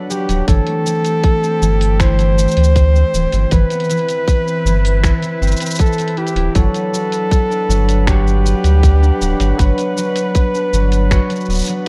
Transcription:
Already playing: G3 B3 D4 F#4 B4 F#5
0.10 F#3 G4, shaker
0.29 D1 F#3, closed hi-hat, shaker
0.47 G1 E3 A3 C4 G4 A4, kick, closed hi-hat, shaker
0.67 A3, closed hi-hat
0.86 E3, shaker
1.05 closed hi-hat, shaker
1.24 kick, closed hi-hat
1.43 C4, shaker
1.61 G1 E3, shaker
1.81 closed hi-hat, shaker
2.00 E4 C5, finger snap, kick, closed hi-hat, shaker
2.19 E3, closed hi-hat, shaker
2.38 A3, shaker
2.48 shaker
2.51 shaker
2.57 D2 E3, closed hi-hat
2.64 shaker
2.76 kick, closed hi-hat, shaker
2.95 C4, shaker
3.14 D1 E3, shaker
3.32 G1 E3, closed hi-hat, shaker
3.51 G1 E3 E4 B4, kick, closed hi-hat, shaker
3.70 B3, closed hi-hat, shaker
3.80 closed hi-hat, shaker
3.90 E3, closed hi-hat, shaker
3.99 closed hi-hat
4.09 closed hi-hat, shaker
4.28 kick, closed hi-hat, shaker
4.47 C4, shaker
4.65 G1 E3, shaker
4.85 closed hi-hat, shaker
5.04 E4, finger snap, kick, closed hi-hat, shaker
5.23 E3, closed hi-hat, shaker
5.42 G1 C4, shaker
5.47 shaker
5.52 shaker
5.56 closed hi-hat, shaker
5.61 C4, shaker
5.66 shaker
5.68 shaker
5.70 shaker
5.74 shaker
5.79 A4, kick, closed hi-hat
5.86 shaker
5.93 shaker
5.98 C4, closed hi-hat, shaker
6.08 closed hi-hat
6.17 E4 G4, closed hi-hat
6.27 closed hi-hat, shaker
6.36 D1 E4, closed hi-hat
6.55 G1 F#3 D4 A4 B4 F#5, kick, closed hi-hat, shaker
6.74 B3, closed hi-hat, shaker
6.94 F#3, shaker
7.12 closed hi-hat, shaker
7.31 kick, closed hi-hat, shaker
7.50 D4, shaker
7.69 G1 F#3, shaker
7.89 closed hi-hat, shaker
8.07 F#4 G4, finger snap, kick, closed hi-hat, shaker
8.26 F#3, shaker
8.45 B3, shaker
8.64 D2 G3, closed hi-hat, shaker
8.83 kick, closed hi-hat, shaker
9.02 D4, shaker
9.21 D1 F#3, shaker
9.40 G1 F#3, closed hi-hat, shaker
9.58 G1 F#3 B4, kick, closed hi-hat, shaker
9.78 B3, closed hi-hat, shaker
9.97 F#3, shaker
10.16 closed hi-hat, shaker
10.35 kick, closed hi-hat, shaker
10.54 D4, shaker
10.73 G1 F#3, shaker
10.92 closed hi-hat, shaker
11.11 F#4, finger snap, kick, closed hi-hat, shaker
11.30 F#3, closed hi-hat, shaker
11.36 shaker
11.40 shaker
11.45 D1, shaker
11.49 B3, shaker
11.52 shaker
11.54 shaker
11.57 shaker
11.59 shaker
11.61 shaker
11.64 shaker
11.66 closed hi-hat, shaker
11.68 F#3, shaker

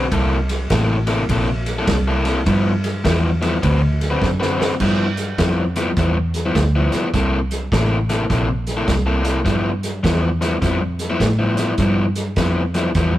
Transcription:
0.12 C2 C3 A#3 E4 A4, kick, ride
0.49 snare, ride
0.70 A1 C3 A#3 E4 A4, kick, snare, ride
1.07 C3 A#3 E4 A4, snare, ride
1.29 A#1 C3 A#3 E4 A4, kick, ride
1.49 muted overdriven electric guitar stroke
1.66 snare, ride
1.79 C3 A#3 E4 A4
1.87 C2, kick, snare, ride
2.08 C3 A#3 E4 A4
2.25 C3 A#3 E4 A4, snare, ride
2.46 G2 F3 B3 E4, kick, ride
2.84 snare, ride
3.04 E2 G2 F3 B3 E4, kick, snare, ride
3.41 G2 F3 B3 E4, snare, ride
3.63 D2 D3 C4 F#4 B4, kick, ride
3.81 muted overdriven electric guitar stroke
4.01 snare, ride
4.10 D3 C4 F#4 B4
4.22 F#2, kick, snare
4.40 D3 C4 F#4 B4, snare
4.59 D3 C4 F#4 B4, snare
4.80 G2 F3 B3 E4, kick, snare, crash
5.17 snare, closed hi-hat
5.38 F2 G2 F3 B3 E4, kick, snare, closed hi-hat
5.76 G2 F3 B3 E4, snare, closed hi-hat
5.97 E2 G2 F3 B3 E4, kick, snare, closed hi-hat
6.17 muted overdriven electric guitar stroke
6.34 snare, closed hi-hat
6.46 G2 F3 B3 E4
6.55 D2, kick, snare, closed hi-hat
6.76 G2 F3 B3 E4
6.92 G2 F3 B3 E4, muted fingered electric bass stroke, snare, closed hi-hat
7.14 C2 C3 A#3 E4 A4, kick, snare, closed hi-hat
7.51 snare, closed hi-hat
7.72 A1 C3 A#3 E4 A4, kick, snare, closed hi-hat
8.09 C3 A#3 E4 A4, snare, closed hi-hat
8.30 A#1 C3 A#3 E4 A4, kick, snare, closed hi-hat
8.48 muted overdriven electric guitar stroke
8.67 snare, closed hi-hat
8.77 C3 A#3 E4 A4
8.88 C2, kick, snare, closed hi-hat
9.06 C3 A#3 E4 A4
9.24 C3 A#3 E4 A4, snare, closed hi-hat
9.45 G2 F3 B3 E4, kick, snare, closed hi-hat
9.83 snare, closed hi-hat
10.03 E2 G2 F3 B3 E4, kick, snare, closed hi-hat
10.41 G2 F3 B3 E4, snare, closed hi-hat
10.62 F2 G2 F3 B3 E4, kick, snare, closed hi-hat
10.82 muted overdriven electric guitar stroke
10.99 snare, closed hi-hat
11.10 G2 F3 B3 E4
11.20 A2, kick, snare, closed hi-hat
11.39 G2 F3 B3 E4
11.57 G2 F3 B3 E4, snare, closed hi-hat
11.78 G2 F3 B3 E4, kick, snare, closed hi-hat
12.15 snare, closed hi-hat
12.36 F2 G2 F3 B3 E4, kick, snare, closed hi-hat
12.74 G2 F3 B3 E4, snare, closed hi-hat
12.95 E2 G2 F3 B3 E4, kick, snare, closed hi-hat
13.15 muted overdriven electric guitar stroke

